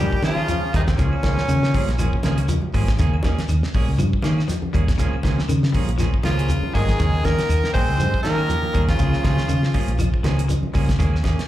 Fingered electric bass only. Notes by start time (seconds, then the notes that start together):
Already playing: G2
0.22 D#3
0.62 muted fingered electric bass stroke
0.74 D#2
0.99 C#2
1.24 C#2
1.48 C#3
1.88 A#1
2.24 C#2
2.63 muted fingered electric bass stroke
2.74 G#1
2.99 D#2
3.24 D#2
3.38 muted fingered electric bass stroke
3.49 D#2
3.74 A#1
3.88 C#2
3.99 G2
4.24 D#3
4.63 muted fingered electric bass stroke
4.74 D#2
4.99 C#2
5.24 C#2
5.49 C#3
5.88 A#1
6.24 C#2
6.63 muted fingered electric bass stroke
6.75 G#1
7.00 D#2
7.25 D#2
7.38 muted fingered electric bass stroke
7.49 D#2
7.75 A#1
7.88 C#2
8.00 G2
8.25 D#3
8.64 muted fingered electric bass stroke
8.75 D#2
9.00 C#2
9.24 C#2
9.49 C#3
9.88 A#1
10.24 C#2
10.63 muted fingered electric bass stroke
10.75 C#2
11.00 D#2
11.25 D#2